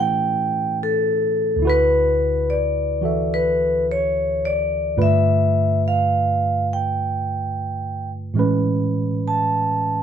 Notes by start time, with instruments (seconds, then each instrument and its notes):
Already playing: tine electric piano A2 E3 A3 C#4 E4 G4 B4
0.00 vibraphone G5
0.83 vibraphone A4
1.56 tine electric piano D2 D3
1.62 tine electric piano E4 F#4
1.67 tine electric piano B4, vibraphone B4
2.50 vibraphone D5
3.01 tine electric piano E3 F#4 A4 E5
3.34 vibraphone B4
3.91 vibraphone C#5
4.45 vibraphone D5
4.97 tine electric piano G2 D3 A3 F4 B4
5.02 vibraphone E5
5.88 vibraphone F5
6.73 vibraphone G5
8.34 tine electric piano A2 E3 G#3
8.38 tine electric piano C#4 B4
9.28 vibraphone A5